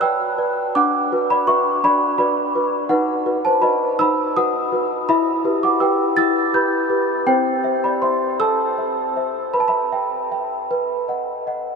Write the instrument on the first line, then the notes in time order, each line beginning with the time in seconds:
celesta
Already playing: F#4 C#5 F#5 A5 B5 F#6
0.00 B4 D5 G5 E6
0.38 B4 D5
0.75 D4 F#5 D6
1.12 F#4 B4
1.30 D5 B5
1.47 F#4 B4 E5 C#6
1.84 D4 D5 B5
2.18 F#4 B4 D5 B5
2.55 F#4 B4
2.89 D#4 B4 F#5
3.26 F#4 B4
3.45 C5 A5
3.61 F#4 B4 D#5 B5
3.99 D#4 B5 E6
4.36 F#4 B4 F#5 D#6
4.72 F#4 B4
5.09 E4 E5 B5
5.44 G4 B4
5.63 F#5 D6
5.80 G4 B4 G5 E6
6.17 E4 E6 A6
6.54 G4 B4 B5 G6
6.90 G4 B4
7.27 C4 C5 G5
7.64 C5 E5
7.84 D5 B5
8.02 C5 E5 C6
8.40 A4 A5 E6
8.78 C5 E5
9.16 C5 E5
9.54 B4 B5
9.60 A5
9.68 E5 B5
9.92 E5 G5
10.31 E5 G5
10.71 B4
11.08 D#5 F#5
11.47 D#5 F#5